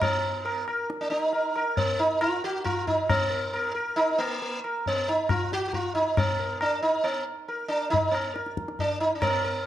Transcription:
0.02 B3, tabla na, tabla ge
0.45 A#4, tabla na
0.68 A#4, tabla na
0.90 tabla te
1.01 D4
1.10 D4, tabla te
1.21 D#4
1.33 A#4, tabla tin
1.56 A#4, tabla na
1.77 B3, tabla tin, tabla ge
1.99 D#4
2.21 F4, tabla na
2.44 F#4
2.64 F4, tabla na, tabla ge
2.87 D#4, tabla ge
3.09 B3, tabla na, tabla ge
3.30 A#4
3.53 A#4, tabla na
3.74 A#4
3.96 D#4, tabla na
4.18 A#3, tabla na
4.42 tabla tin
4.64 A#4, tabla na
4.86 B3, tabla tin, tabla ge
5.08 D#4
5.29 F4, tabla na, tabla ge
5.52 F#4, tabla te
5.68 F#4
5.73 F4, tabla tin, tabla ge
5.95 D#4
6.17 B3, tabla na, tabla ge
6.39 A#4
6.61 D4, tabla na
6.82 D#4
7.04 B3, tabla na
7.48 A#4, tabla tin
7.68 D4, tabla na
7.90 D#4, tabla tin, tabla ge
8.11 B3, tabla na
8.34 A#4, tabla te
8.46 tabla te
8.57 tabla ke
8.68 tabla te
8.79 D4, tabla tin, tabla ge
9.00 D#4
9.15 D4
9.22 B3 A#4, tabla na, tabla ge
9.44 A#4

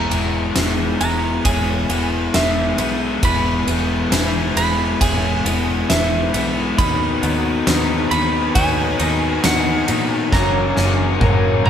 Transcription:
Already playing: E2 E3 G#3 B3 E4 G#4 B4 A#5
0.11 E1 B2 E3 G#3 B3 E4, ride
0.56 E1 E3 G#3 B3 E4 G#4, snare, ride
1.00 E1 E3 G#3 B3 E4 A#5, ride
1.45 E1 E3 G#3 B3 E4 G#4 C#5 G#5, kick, ride
1.89 E1 E3 G#3 B3 E4 B4, ride
2.34 E1 E3 G#3 B3 E4 E5, snare, ride
2.78 B1 E3 G#3 B3 E4, ride
3.22 E1 E2 E3 G#3 B3 E4 B4 B5, kick, ride
3.67 E1 B2 E3 G#3 B3 E4, ride
4.11 E1 E3 G#3 B3 E4 G#4, snare, ride
4.56 E1 E3 G#3 B3 E4 B5, ride
5.00 E1 E3 G#3 B3 E4 G#4 C#5 G#5, kick, ride
5.45 E1 E3 G#3 B3 E4 B4, ride
5.89 E1 E3 G#3 B3 E4 E5, snare, ride
6.33 B1 E3 G#3 B3 E4, ride
6.77 D#2 D#3 F#3 B3 D#4 F#4 B4 B5, kick, ride
7.22 D#2 D#3 F#3 B3 D#4, ride
7.66 D#2 D#3 F#3 B3 D#4 G#4, snare, ride
8.11 D#2 D#3 F#3 B3 D#4 B5, ride
8.55 D#2 D#3 F#3 B3 D#4 F#4 G#4 C#5 G#5, kick, ride
8.99 D#2 D#3 F#3 B3 D#4 B4, ride
9.44 D#2 D#3 F#3 B3 D#4 F#5, snare, ride
9.88 A#2 D#3 F#3 B3 D#4, ride
10.32 F#1 F#2 C#3 F#3 A#3 C#4 G#4 A#4 C#5 A#5, kick, snare
10.76 F#1 F#2 C#3 F#3 A#3 C#4, snare
11.20 F#1 F#2 C#3 F#3 A#3 C#4 A#4, kick, high tom
11.64 F#1 F#2 C#3 F#3 A#3 C#4 A#5, high tom

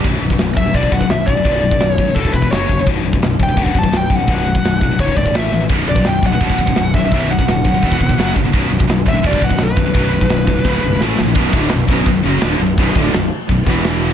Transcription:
0.04 B0 B1 F#2 B2, kick, crash
0.22 B0 B1 F#2, open hi-hat
0.30 B1 F#2, kick
0.38 B0 B1 F#2, snare, open hi-hat
0.56 D1 B1 F#2 E5, kick, open hi-hat
0.66 B1 F#2
0.74 E1 B1 F#2 B2 D5, kick, open hi-hat
0.83 kick
0.91 B0 B1 F#2 F#5, kick, open hi-hat
1.01 B1 F#2, kick
1.09 B0 B1 F#2 E5, snare, open hi-hat
1.27 B0 B1 F#2 D5, kick, open hi-hat
1.37 B1 F#2
1.44 B0 B1 F#2 B2, kick, open hi-hat
1.61 B1 F#2, open hi-hat
1.71 B1 F#2, kick
1.80 B0 B1 F#2, snare, open hi-hat
1.90 C#5
1.98 B1 F#2, kick, open hi-hat
2.07 B1 F#2
2.15 E1 E2 B2 E3 A4, kick, open hi-hat
2.25 kick
2.33 E1 E2 B2 B4, kick, open hi-hat
2.42 E2 B2, kick
2.51 F#1 F#2 C#3 F#3 C#5, snare, open hi-hat
2.69 F#1 F#2 C#3, kick, open hi-hat
2.79 F#2 C#3
2.86 B0 B1 F#2 B2, kick, open hi-hat
3.04 B0 B1 F#2, open hi-hat
3.13 B1 F#2, kick
3.22 B0 B1 F#2, snare, open hi-hat
3.39 D1 B1 F#2, kick, open hi-hat
3.43 G5
3.49 B1 F#2
3.56 E1 B1 F#2 B2, kick, open hi-hat
3.63 F#5, kick
3.74 B0 B1 F#2, kick, open hi-hat
3.79 A5
3.83 B1 F#2, kick
3.92 B0 B1 F#2, snare, open hi-hat
3.97 G5
4.10 B0 B1 F#2, kick, open hi-hat
4.15 F#2 F#5
4.19 B1
4.27 B0 B1 F#2 B2, kick, open hi-hat
4.46 B1 F#2, open hi-hat
4.55 B1 F#2, kick
4.63 B0 B1 F#2, snare, open hi-hat
4.81 B1 F#2, kick, open hi-hat
4.91 B1 F#2
4.99 C#1 C#2 G#2 C#3 C#5, kick, open hi-hat
5.08 kick
5.16 B0 C#2 G#2 D5, kick, open hi-hat
5.26 C#2 G#2, kick
5.34 A1 A2 E3 A3 E5, snare, open hi-hat
5.52 A1 A2 E3, snare
5.61 A2 E3
5.69 B0 B1 F#2 B2, kick, open hi-hat, crash
5.87 B0 B1 F#2 D5, open hi-hat
5.96 B1 F#2, kick
6.04 B0 B1 F#2 G5, snare, open hi-hat
6.21 D1 B1 F#2, kick, open hi-hat
6.26 F#5
6.33 B1 F#2
6.40 E1 B1 F#2 B2, kick, open hi-hat
6.50 kick
6.58 B0 B1 F#2, kick, open hi-hat
6.67 B1 F#2, kick
6.75 B0 B1 F#2, snare, open hi-hat
6.93 B0 B1 F#2 E5, kick, open hi-hat
7.05 B1 F#2
7.11 B0 B1 F#2 B2 E5, kick, open hi-hat
7.30 B1 F#2 F#5, open hi-hat
7.39 B1 F#2, kick
7.47 D1 B1 F#2, snare, open hi-hat
7.64 B1 F#2, kick, open hi-hat
7.74 B1 F#2
7.82 E1 E2 B2 E3, kick, open hi-hat
7.92 kick
8.00 F1 E2 B2, kick, open hi-hat
8.09 E2 B2, kick
8.18 F#1 F#2 C#3 F#3, snare, open hi-hat
8.35 F#1 F#2 C#3, kick, open hi-hat
8.44 F#2 C#3
8.53 B0 B1 F#2 B2, kick, open hi-hat
8.70 B0 B1 F#2, open hi-hat
8.79 B1 F#2, kick
8.89 B0 B1 F#2, snare, open hi-hat
9.06 D1 B1 F#2 E5, kick, open hi-hat
9.17 B1 F#2
9.24 E1 B1 F#2 B2 D5, kick, open hi-hat
9.33 kick
9.42 B0 B1 F#2 F#5, kick, open hi-hat
9.50 B1 F#2, kick
9.58 B0 B1 F#2, snare, open hi-hat
9.63 B4
9.77 B0 B1 F#2, kick, open hi-hat
9.86 B1 F#2
9.94 B0 B1 F#2 B2, kick, open hi-hat
10.12 B1 F#2, open hi-hat
10.21 B1 F#2, kick
10.29 B0 B1 F#2, snare, open hi-hat
10.47 B1 F#2, kick, open hi-hat
10.58 B1 F#2
10.64 C#1 C#2 G#2 C#3, kick, snare
10.84 B0 C#2 G#2
10.95 C#2 G#2
11.01 A1 A2 E3 A3, snare
11.19 A#1 A2 E3, snare
11.27 A2 E3
11.35 B0 B1 F#2 B2, kick, crash
11.53 D1 D2 A2 D3, kick
11.69 B0 B1 F#2, snare, crash
11.87 B0 B1 F#2 B2, kick
12.05 B0 B1 F#2, kick, crash
12.23 F#1 F#2 C#3 F#3
12.41 D1 D2 A2 D3, snare, crash
12.59 B0 B1 F#2
12.77 B0 B1 F#2 B2, kick, crash
12.95 D1 D2 A2 D3, kick
13.13 B0 B1 F#2, snare, crash
13.49 B0 B1 F#2, kick, crash
13.66 E1 E2 B2 E3, kick
13.84 snare, crash

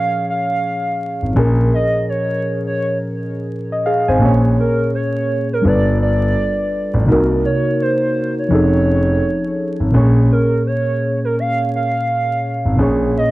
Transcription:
Already playing: A#2 F3 C#4 G#4 C#5 F5
0.29 F5
1.22 G#1
1.33 A#1 A#2 F3 C#4
1.37 G#4 A#4
1.74 D#5
2.09 C#5
2.67 C#5
3.72 D#5
3.86 G#4 F5
4.08 G#1 C5 G#5
4.19 A#1 A#2 A#3 C#4
4.23 G#4 C#5
4.60 A#4
4.95 C#5
5.53 A#4
5.61 G1 G3 D4 F4
5.65 A4 B4 D5
6.02 D5
6.94 A1
7.06 C2 C3 A#3 D#4
7.10 F#4 A#4
7.45 C#5
7.82 C5
8.39 C#5
8.48 F1 F3 C#4 D#4
8.53 G#4 A4
9.80 G#1
9.91 A#1 A#2 A#3 C#4
9.96 G#4 C#5
10.31 A#4
10.67 C#5
11.24 A#4
11.39 F5
11.76 F5
12.65 G#1
12.76 A#1 A#2 A#3 C#4
12.81 G#4 C#5
13.17 D#5

